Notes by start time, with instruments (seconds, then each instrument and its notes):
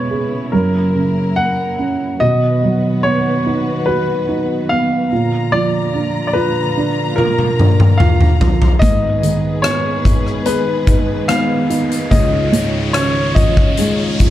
Already playing: upright piano B2 G#3 B3, string section C#3 G#3 B3 E4 B4, grand piano C#5
0.11 upright piano G#4
0.50 upright piano F#2, string section F#3 A#3 A#4, grand piano A#4
0.94 upright piano C#3
1.36 upright piano A#3, grand piano F#5
1.79 upright piano C#4
2.20 upright piano B2, string section D#3 F#3 B3 F#4 B4, grand piano D#5
2.63 upright piano F#3
3.03 upright piano B3, grand piano C#5
3.47 upright piano D#4
3.86 upright piano F#4, grand piano B4
4.29 upright piano D#4
4.69 upright piano B3, grand piano F5
5.10 string section A#2 D3 F3 F4 A#5, upright piano A#2
5.52 upright piano F3, grand piano D5
5.94 upright piano D4
6.27 grand piano D5
6.33 upright piano F4, grand piano B4
6.77 upright piano D4
7.16 upright piano F4, grand piano A#4, high tom
7.39 high tom
7.59 upright piano D4, mid tom
7.80 mid tom
7.98 upright piano F4, grand piano F5, mid tom
8.21 mid tom
8.41 upright piano F3, floor tom
8.62 floor tom
8.79 nylon-string guitar G#2 D#3 G#3 B3 D#4, upright piano G#2, string section D#3 G#3 B3 G#4 B4, grand piano D#5, kick, closed hi-hat, riser
8.83 nylon-string guitar G#4
9.22 upright piano D#3, nylon-string guitar G#3 B3 D#4 G#4, closed hi-hat
9.62 upright piano B3, grand piano C#5, cross-stick, closed hi-hat
10.05 upright piano D#4, kick, closed hi-hat
10.26 cross-stick
10.45 nylon-string guitar G#3 B3 D#4 G#4, upright piano G#4, grand piano B4, closed hi-hat
10.87 upright piano D#4, kick, closed hi-hat
11.27 nylon-string guitar G#3 B3 D#4 G#4, upright piano B3, grand piano F5, cross-stick, closed hi-hat
11.70 upright piano D#4, closed hi-hat
11.91 closed hi-hat
12.10 upright piano C#2, nylon-string guitar C#3 G#3 D#4 F4 G#4, string section G#3 C#4 F4 C#5, grand piano D#5, kick, closed hi-hat
12.52 upright piano G#2, nylon-string guitar D#4 F4 G#4, closed hi-hat
12.93 upright piano C#3, grand piano C#5, cross-stick, closed hi-hat
13.35 upright piano F3, grand piano D#5, kick, closed hi-hat
13.57 kick, cross-stick
13.77 nylon-string guitar G#3 D#4 F4 G#4, upright piano G#3, closed hi-hat
14.20 upright piano F3, kick, closed hi-hat